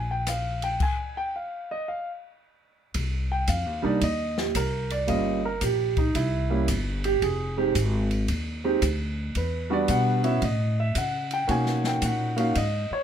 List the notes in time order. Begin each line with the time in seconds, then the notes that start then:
Already playing: A#1
0.11 G5
0.27 F5, cross-stick, hi-hat pedal, ride
0.62 G5, ride
0.80 G#5, kick, crash
1.17 G5
1.36 F5
1.71 D#5
1.88 F5
2.94 C2, kick, ride
3.32 G5
3.47 F2 F5, kick, hi-hat pedal, ride
3.66 D#2
3.82 C2 G3 A#3 D4 D#4 D5
4.01 D#2 D#5, kick, ride
4.38 G4, snare
4.55 C2 A#4, kick, hi-hat pedal, ride
4.90 D5, ride
5.07 G1 G3 A#3 C#4 F4 D#5, kick, ride
5.45 A#4
5.61 A#1 G4, kick, hi-hat pedal, ride
5.97 D#4, kick, ride
6.15 C2 E4, kick, ride
6.50 G3 A#3 C#4 E4
6.68 G1, kick, hi-hat pedal, ride
7.04 G4, ride
7.22 F1 G#4, kick, ride
7.57 G#3 C4 D#4 G4
7.75 G#1, kick, hi-hat pedal, ride
8.11 ride
8.28 D#2, kick, ride
8.64 G#3 C4 D#4 G4
8.82 D2, kick, hi-hat pedal, ride
9.35 E2 B4, kick, ride
9.70 G3 B3 D4 F#4 D5
9.88 B2 F#5, kick, hi-hat pedal, ride
10.23 B3 C#4 E4 F#4 E5, ride
10.42 A2 D#5, kick, ride
10.80 E5
10.95 C#3 F#5, kick, hi-hat pedal, ride
11.31 G5, ride
11.47 B2 A#3 C#4 D#4 F#4 G#5, kick, ride
11.66 snare
11.84 G5, snare
12.02 A#2 F#5, kick, hi-hat pedal, ride
12.36 A#3 C#4 D#4 F#4 F5, ride
12.55 G#2 D#5, kick, ride
12.91 C#5, muted upright bass stroke